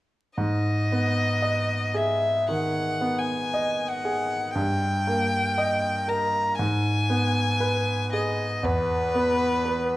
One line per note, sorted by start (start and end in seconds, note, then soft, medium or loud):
0.37 2.44 G#2 soft
0.37 1.98 D#5 medium
0.92 1.75 B3 soft
1.42 2.26 D#5 soft
1.94 2.79 G#4 soft
1.94 2.48 E5 medium
2.49 3.32 D#3 soft
2.49 3.20 F#5 medium
3.01 3.84 B3 soft
3.18 3.89 G#5 medium
3.54 4.36 D#5 soft
3.88 4.54 F#5 medium
4.05 4.56 G#4 soft
4.55 6.54 G2 soft
4.55 6.10 G5 medium
5.07 5.88 A#3 soft
5.58 6.38 D#5 soft
6.08 6.58 A#4 soft
6.08 6.57 A#5 medium
6.58 8.60 G#2 soft
6.58 8.09 G#5 medium
7.10 7.92 B3 soft
7.60 8.43 B4 soft
8.13 8.64 G#4 soft
8.13 8.66 D#5 medium
8.63 9.97 E2 soft
8.63 9.97 B4 medium
9.15 9.96 B3 soft
9.65 9.97 B4 soft